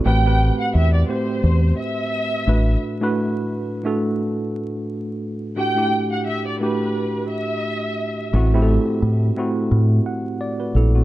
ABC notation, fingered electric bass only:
X:1
M:4/4
L:1/16
Q:"Swing 16ths" 1/4=87
K:Ador
V:1 name="Fingered electric bass" clef=bass
A,,,3 z E,,2 z2 E,,2 z4 A,,,2 | z16 | z16 | A,,,3 z A,,2 z2 A,,2 z4 _B,,,2 |]